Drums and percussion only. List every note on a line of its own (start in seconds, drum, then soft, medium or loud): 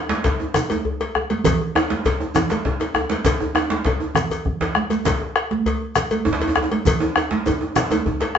0.09 djembe slap loud
0.09 djembe slap medium
0.09 high conga medium
0.24 bombo low medium
0.24 cowbell medium
0.24 djembe slap medium
0.24 djembe tone medium
0.24 djembe bass medium
0.24 shekere soft
0.39 djembe slap soft
0.39 high conga soft
0.39 djembe tone medium
0.54 bombo rim medium
0.54 cowbell soft
0.54 djembe slap medium
0.54 high conga soft
0.54 djembe tone medium
0.54 low conga medium
0.54 shekere medium
0.70 bombo rim soft
0.70 cowbell soft
0.70 high conga medium
0.70 djembe tone medium
0.70 shekere soft
0.85 djembe bass medium
1.00 cowbell soft
1.00 djembe slap medium
1.00 high conga soft
1.15 bombo rim medium
1.15 djembe tone medium
1.15 high conga soft
1.30 bombo rim soft
1.30 cowbell soft
1.30 djembe slap soft
1.30 high conga medium
1.44 bombo low medium
1.44 cowbell medium
1.44 djembe slap medium
1.44 high conga soft
1.44 low conga medium
1.44 djembe bass medium
1.44 shekere medium
1.61 djembe slap soft
1.61 djembe tone medium
1.75 bombo rim medium
1.75 cowbell soft
1.75 djembe tone loud
1.90 djembe slap medium
1.90 high conga medium
2.05 bombo low medium
2.05 cowbell medium
2.05 djembe slap medium
2.05 djembe tone medium
2.05 djembe bass medium
2.05 shekere soft
2.20 djembe slap soft
2.20 high conga soft
2.20 djembe tone medium
2.35 bombo rim medium
2.35 cowbell soft
2.35 djembe slap medium
2.35 djembe tone loud
2.35 high conga soft
2.35 low conga medium
2.35 shekere medium
2.50 bombo rim soft
2.50 cowbell soft
2.50 djembe slap medium
2.50 high conga medium
2.50 djembe tone medium
2.50 shekere soft
2.65 bombo low medium
2.65 djembe slap medium
2.65 djembe slap soft
2.65 djembe bass medium
2.80 cowbell soft
2.80 djembe slap medium
2.80 djembe tone medium
2.80 high conga soft
2.94 bombo rim medium
2.94 djembe tone medium
2.94 high conga soft
2.96 djembe tone medium
3.09 bombo rim soft
3.09 djembe slap medium
3.09 high conga medium
3.11 cowbell soft
3.11 djembe slap soft
3.25 bombo rim soft
3.25 bombo low medium
3.25 cowbell medium
3.25 djembe slap medium
3.25 high conga soft
3.25 low conga medium
3.25 shekere medium
3.26 djembe slap medium
3.26 djembe bass medium
3.40 bombo rim soft
3.40 djembe slap soft
3.40 djembe tone medium
3.42 djembe tone medium
3.55 bombo rim medium
3.55 cowbell soft
3.55 djembe tone loud
3.55 high conga soft
3.70 bombo rim soft
3.70 djembe slap medium
3.70 high conga medium
3.72 djembe slap medium
3.85 bombo rim soft
3.85 bombo low medium
3.85 cowbell soft
3.85 djembe slap medium
3.85 djembe tone medium
3.85 djembe bass medium
4.00 djembe tone medium
4.15 bombo rim medium
4.15 cowbell soft
4.15 djembe slap medium
4.15 high conga soft
4.15 low conga medium
4.15 shekere medium
4.31 cowbell soft
4.31 djembe tone medium
4.31 low conga soft
4.31 shekere soft
4.45 bombo rim soft
4.45 bombo low medium
4.45 low conga medium
4.45 djembe bass soft
4.60 bombo rim soft
4.60 cowbell soft
4.60 djembe slap medium
4.60 low conga medium
4.60 djembe bass soft
4.75 bombo rim loud
4.75 djembe slap medium
4.75 high conga medium
4.90 bombo rim soft
4.90 cowbell soft
4.90 djembe slap medium
4.90 high conga medium
4.90 shekere soft
5.05 bombo low medium
5.05 cowbell medium
5.05 djembe slap medium
5.05 high conga soft
5.05 low conga medium
5.05 djembe bass medium
5.05 shekere medium
5.22 djembe slap soft
5.22 djembe tone medium
5.36 bombo rim loud
5.36 cowbell soft
5.51 djembe slap medium
5.51 high conga medium
5.66 cowbell soft
5.66 djembe tone medium
5.66 djembe bass medium
5.66 shekere soft
5.82 djembe slap soft
5.82 high conga soft
5.96 bombo rim medium
5.96 cowbell soft
5.96 djembe slap medium
5.96 high conga soft
5.96 low conga medium
5.96 shekere medium
6.11 bombo rim soft
6.11 cowbell soft
6.11 djembe tone medium
6.11 high conga soft
6.11 shekere soft
6.25 bombo low medium
6.25 djembe slap soft
6.25 djembe tone loud
6.25 djembe bass medium
6.33 djembe slap medium
6.40 cowbell soft
6.40 djembe slap medium
6.40 djembe tone medium
6.40 high conga soft
6.48 djembe tone loud
6.55 bombo rim medium
6.55 djembe slap medium
6.55 djembe tone medium
6.55 high conga soft
6.63 djembe tone medium
6.71 bombo rim soft
6.71 cowbell soft
6.71 high conga medium
6.85 bombo low medium
6.85 cowbell medium
6.85 djembe slap medium
6.85 high conga soft
6.85 low conga medium
6.85 djembe bass medium
6.85 shekere medium
7.00 djembe slap soft
7.00 djembe tone loud
7.00 djembe tone soft
7.16 bombo rim loud
7.16 cowbell soft
7.16 djembe tone medium
7.31 djembe slap soft
7.31 djembe slap medium
7.31 high conga medium
7.46 bombo low medium
7.46 cowbell soft
7.46 djembe tone medium
7.46 djembe tone loud
7.46 shekere soft
7.61 djembe slap soft
7.61 djembe tone medium
7.61 high conga soft
7.76 bombo rim medium
7.76 cowbell soft
7.76 djembe slap medium
7.76 high conga soft
7.76 low conga medium
7.76 shekere medium
7.91 bombo rim soft
7.91 cowbell medium
7.91 djembe tone loud
7.91 djembe tone medium
7.91 high conga medium
7.91 shekere soft
8.06 bombo low medium
8.06 djembe slap soft
8.06 djembe tone medium
8.06 djembe bass medium
8.20 cowbell medium
8.20 djembe slap soft
8.20 djembe slap medium
8.20 high conga soft